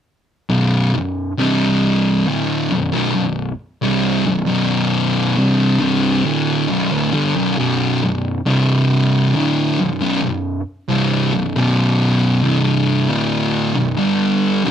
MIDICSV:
0, 0, Header, 1, 2, 480
1, 0, Start_track
1, 0, Key_signature, 2, "minor"
1, 0, Tempo, 884956
1, 266, Time_signature, 4, 2, 24, 8
1, 7978, End_track
2, 0, Start_track
2, 0, Title_t, "Distorted electric guitar"
2, 0, Program_c, 0, 30
2, 268, Note_on_c, 0, 35, 88
2, 270, Note_on_c, 0, 42, 100
2, 273, Note_on_c, 0, 47, 109
2, 500, Note_off_c, 0, 35, 0
2, 502, Note_off_c, 0, 42, 0
2, 503, Note_off_c, 0, 47, 0
2, 510, Note_on_c, 0, 35, 66
2, 511, Note_on_c, 0, 42, 77
2, 701, Note_off_c, 0, 35, 0
2, 702, Note_off_c, 0, 42, 0
2, 749, Note_on_c, 0, 36, 96
2, 753, Note_on_c, 0, 43, 103
2, 754, Note_on_c, 0, 48, 121
2, 1222, Note_off_c, 0, 36, 0
2, 1224, Note_off_c, 0, 43, 0
2, 1225, Note_off_c, 0, 48, 0
2, 1232, Note_on_c, 0, 38, 76
2, 1233, Note_on_c, 0, 45, 90
2, 1236, Note_on_c, 0, 50, 93
2, 1464, Note_off_c, 0, 38, 0
2, 1464, Note_off_c, 0, 45, 0
2, 1466, Note_off_c, 0, 50, 0
2, 1471, Note_on_c, 0, 35, 60
2, 1472, Note_on_c, 0, 42, 80
2, 1579, Note_off_c, 0, 35, 0
2, 1583, Note_off_c, 0, 42, 0
2, 1585, Note_on_c, 0, 35, 100
2, 1590, Note_on_c, 0, 42, 100
2, 1701, Note_off_c, 0, 35, 0
2, 1703, Note_off_c, 0, 42, 0
2, 1706, Note_on_c, 0, 35, 63
2, 1709, Note_on_c, 0, 42, 63
2, 1901, Note_off_c, 0, 35, 0
2, 1902, Note_off_c, 0, 42, 0
2, 2070, Note_on_c, 0, 36, 83
2, 2075, Note_on_c, 0, 43, 91
2, 2076, Note_on_c, 0, 48, 89
2, 2304, Note_off_c, 0, 36, 0
2, 2306, Note_off_c, 0, 43, 0
2, 2307, Note_off_c, 0, 48, 0
2, 2311, Note_on_c, 0, 35, 75
2, 2314, Note_on_c, 0, 42, 78
2, 2418, Note_off_c, 0, 35, 0
2, 2421, Note_off_c, 0, 42, 0
2, 2425, Note_on_c, 0, 35, 88
2, 2428, Note_on_c, 0, 42, 99
2, 2430, Note_on_c, 0, 47, 99
2, 2902, Note_off_c, 0, 35, 0
2, 2903, Note_off_c, 0, 42, 0
2, 2904, Note_off_c, 0, 47, 0
2, 2913, Note_on_c, 0, 36, 105
2, 2915, Note_on_c, 0, 43, 113
2, 2917, Note_on_c, 0, 48, 106
2, 3138, Note_off_c, 0, 36, 0
2, 3142, Note_off_c, 0, 43, 0
2, 3143, Note_off_c, 0, 48, 0
2, 3145, Note_on_c, 0, 36, 92
2, 3148, Note_on_c, 0, 43, 86
2, 3150, Note_on_c, 0, 48, 112
2, 3381, Note_off_c, 0, 36, 0
2, 3383, Note_off_c, 0, 43, 0
2, 3384, Note_off_c, 0, 48, 0
2, 3387, Note_on_c, 0, 38, 94
2, 3390, Note_on_c, 0, 45, 97
2, 3391, Note_on_c, 0, 50, 97
2, 3621, Note_off_c, 0, 38, 0
2, 3623, Note_on_c, 0, 35, 84
2, 3624, Note_off_c, 0, 45, 0
2, 3624, Note_off_c, 0, 50, 0
2, 3629, Note_on_c, 0, 42, 110
2, 3741, Note_off_c, 0, 35, 0
2, 3743, Note_off_c, 0, 42, 0
2, 3750, Note_on_c, 0, 38, 84
2, 3754, Note_on_c, 0, 45, 100
2, 3863, Note_off_c, 0, 38, 0
2, 3865, Note_on_c, 0, 43, 79
2, 3866, Note_off_c, 0, 45, 0
2, 3869, Note_on_c, 0, 50, 97
2, 3981, Note_off_c, 0, 43, 0
2, 3983, Note_off_c, 0, 50, 0
2, 3990, Note_on_c, 0, 35, 88
2, 3993, Note_on_c, 0, 42, 92
2, 4100, Note_off_c, 0, 35, 0
2, 4102, Note_off_c, 0, 42, 0
2, 4107, Note_on_c, 0, 35, 101
2, 4108, Note_on_c, 0, 42, 103
2, 4111, Note_on_c, 0, 47, 117
2, 4342, Note_off_c, 0, 35, 0
2, 4343, Note_off_c, 0, 42, 0
2, 4344, Note_off_c, 0, 47, 0
2, 4353, Note_on_c, 0, 35, 65
2, 4355, Note_on_c, 0, 42, 74
2, 4544, Note_off_c, 0, 35, 0
2, 4545, Note_off_c, 0, 42, 0
2, 4588, Note_on_c, 0, 36, 104
2, 4591, Note_on_c, 0, 43, 101
2, 4591, Note_on_c, 0, 48, 111
2, 5062, Note_off_c, 0, 36, 0
2, 5063, Note_off_c, 0, 43, 0
2, 5063, Note_off_c, 0, 48, 0
2, 5067, Note_on_c, 0, 38, 98
2, 5068, Note_on_c, 0, 45, 105
2, 5073, Note_on_c, 0, 50, 111
2, 5301, Note_off_c, 0, 38, 0
2, 5302, Note_off_c, 0, 45, 0
2, 5304, Note_off_c, 0, 50, 0
2, 5312, Note_on_c, 0, 35, 61
2, 5315, Note_on_c, 0, 42, 68
2, 5421, Note_off_c, 0, 35, 0
2, 5422, Note_off_c, 0, 42, 0
2, 5427, Note_on_c, 0, 35, 87
2, 5428, Note_on_c, 0, 42, 104
2, 5539, Note_off_c, 0, 35, 0
2, 5540, Note_off_c, 0, 42, 0
2, 5545, Note_on_c, 0, 35, 67
2, 5546, Note_on_c, 0, 42, 81
2, 5739, Note_off_c, 0, 35, 0
2, 5739, Note_off_c, 0, 42, 0
2, 5906, Note_on_c, 0, 36, 86
2, 5912, Note_on_c, 0, 43, 92
2, 5915, Note_on_c, 0, 48, 100
2, 6139, Note_off_c, 0, 36, 0
2, 6142, Note_off_c, 0, 43, 0
2, 6144, Note_off_c, 0, 48, 0
2, 6145, Note_on_c, 0, 35, 72
2, 6148, Note_on_c, 0, 42, 74
2, 6263, Note_off_c, 0, 35, 0
2, 6265, Note_off_c, 0, 42, 0
2, 6269, Note_on_c, 0, 35, 89
2, 6271, Note_on_c, 0, 42, 92
2, 6274, Note_on_c, 0, 47, 99
2, 6740, Note_off_c, 0, 35, 0
2, 6740, Note_off_c, 0, 42, 0
2, 6742, Note_off_c, 0, 47, 0
2, 6742, Note_on_c, 0, 36, 99
2, 6743, Note_on_c, 0, 43, 107
2, 6746, Note_on_c, 0, 48, 124
2, 7095, Note_off_c, 0, 36, 0
2, 7096, Note_off_c, 0, 43, 0
2, 7097, Note_off_c, 0, 48, 0
2, 7098, Note_on_c, 0, 38, 85
2, 7101, Note_on_c, 0, 50, 87
2, 7102, Note_on_c, 0, 45, 85
2, 7453, Note_off_c, 0, 38, 0
2, 7454, Note_off_c, 0, 50, 0
2, 7455, Note_off_c, 0, 45, 0
2, 7459, Note_on_c, 0, 35, 65
2, 7463, Note_on_c, 0, 42, 70
2, 7575, Note_off_c, 0, 35, 0
2, 7576, Note_off_c, 0, 42, 0
2, 7577, Note_on_c, 0, 43, 98
2, 7578, Note_on_c, 0, 50, 104
2, 7582, Note_on_c, 0, 55, 89
2, 7932, Note_off_c, 0, 43, 0
2, 7932, Note_off_c, 0, 50, 0
2, 7934, Note_off_c, 0, 55, 0
2, 7941, Note_on_c, 0, 35, 110
2, 7942, Note_on_c, 0, 42, 109
2, 7946, Note_on_c, 0, 47, 101
2, 7978, Note_off_c, 0, 35, 0
2, 7978, Note_off_c, 0, 42, 0
2, 7978, Note_off_c, 0, 47, 0
2, 7978, End_track
0, 0, End_of_file